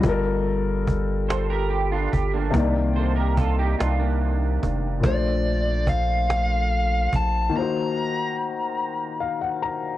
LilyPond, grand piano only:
\new Staff \with { instrumentName = "Grand piano" } { \time 6/8 \key bes \major \tempo 4. = 48 << { r2. | r2. | r2. | r2 f''16 ges''16 bes''8 | } \\ { <g f' a' bes'>2. | <c ees bes d''>2. | <bes, a d' c''>2. | <ees bes f' ges' c''>2. | } >> }